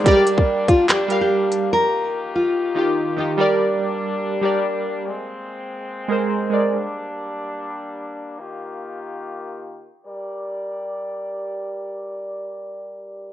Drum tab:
HH |x-x---x-x-x---x-|----------------|----------------|----------------|
CP |--------x-------|----------------|----------------|----------------|
BD |o--o--o---------|----------------|----------------|----------------|

HH |----------------|----------------|----------------|----------------|
CP |----------------|----------------|----------------|----------------|
BD |----------------|----------------|----------------|----------------|